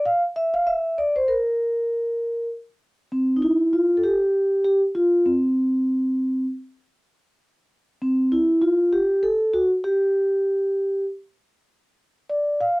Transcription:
0.05 F5
0.36 E5
0.54 F5
0.67 E5
0.98 D5
1.16 C5
1.28 A#4
3.12 C4
3.37 D#4
3.42 E4
3.73 F4
3.97 A4
4.03 G4
4.64 G4
4.95 F4
5.26 C4
8.02 C4
8.32 E4
8.62 F4
8.93 G4
9.23 A4
9.54 F#4
9.84 G4
12.30 D5
12.61 F5

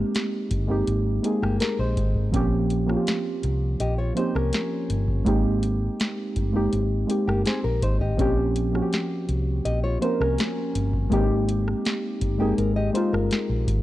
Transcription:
Already playing: G#3 A#3 C4 D#4 G4
0.15 snare, closed hi-hat
0.51 G1, kick, closed hi-hat
0.67 G#3 A#3 C4 D#4 G4
0.87 G#1, closed hi-hat
1.22 G#3 A#3 C4 D#4 G#4, closed hi-hat
1.42 G1 A#3 G4, cross-stick
1.60 A#4, snare, closed hi-hat
1.79 A#1 D#4 C5
1.97 G#1, kick, closed hi-hat
2.15 kick
2.32 A#1 F3 A#3 C4 C#4, kick, closed hi-hat
2.36 G4
2.70 closed hi-hat
2.86 F3 A#3 C4 C#4 F4, cross-stick
2.97 G4
3.07 snare, closed hi-hat
3.43 C2, closed hi-hat
3.80 A#1 G4 D#5, closed hi-hat
3.98 F4 C#5
4.15 F3 A#3 C4 C#4 D#4 C5, closed hi-hat
4.19 G4
4.35 C2 C#4 A#4, cross-stick
4.53 snare, closed hi-hat
4.90 G1, closed hi-hat
5.08 kick
5.25 G#1 G#3 A#3 C4 D#4 G4, kick, closed hi-hat
5.63 closed hi-hat
6.00 snare, closed hi-hat
6.36 G1, kick, closed hi-hat
6.53 G#3 A#3 C4 D#4 G4
6.73 G#1, closed hi-hat
7.07 G#3 A#3 C4 D#4 G4, closed hi-hat
7.28 G1 A#3 G4, cross-stick
7.46 C4 G#4, snare, closed hi-hat
7.64 A#1 A#4
7.82 G#1 D#4 C5, kick, closed hi-hat
8.01 G4 D#5, kick
8.17 A#1 F3 A#3 C4 C#4 G4, kick, closed hi-hat
8.56 closed hi-hat
8.72 F3 A#3 C4 C#4 F#4, cross-stick
8.82 G4
8.93 snare, closed hi-hat
9.29 C2, closed hi-hat
9.65 A#1 G4 D#5, closed hi-hat
9.84 F4 C#5
10.00 F3 A#3 C4 C#4 D#4 A#4 C5, closed hi-hat
10.20 C2 C#4 A#4, cross-stick
10.38 snare, closed hi-hat
10.75 G1, closed hi-hat
10.93 kick
11.10 G#1 G#3 A#3 C4 D#4 G4, kick, closed hi-hat
11.49 closed hi-hat
11.68 cross-stick
11.85 snare, closed hi-hat
12.21 G1, kick, closed hi-hat
12.38 G#3 A#3 C4 D#4 G4 G#4
12.58 G#1 A#4, closed hi-hat
12.76 G4 D#5
12.93 G#3 A#3 C4 D#4 F4 C5, closed hi-hat
13.13 G1 A#4, cross-stick
13.31 snare, closed hi-hat
13.50 A#1
13.68 G#1, kick, closed hi-hat

